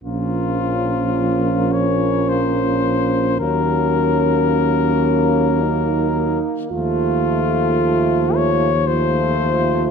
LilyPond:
<<
  \new Staff \with { instrumentName = "Cornet" } { \time 3/4 \key bes \minor \tempo 4 = 55 f'4. des''8 c''4 | bes'2~ bes'8. r16 | f'4. des''8 c''4 | }
  \new Staff \with { instrumentName = "French horn section" } { \time 3/4 \key bes \minor des'2. | des'2 ees'4 | f'2 f'4 | }
  \new Staff \with { instrumentName = "Trombone section" } { \time 3/4 \key bes \minor bes2. | bes2. | a2 a4 | }
  \new Staff \with { instrumentName = "Euphonium" } { \clef bass \time 3/4 \key bes \minor f2. | ges2~ ges8. r16 | f2 f4 | }
  \new Staff \with { instrumentName = "Tuba" } { \clef bass \time 3/4 \key bes \minor bes,,2. | ees,2~ ees,8. r16 | ees,2. | }
>>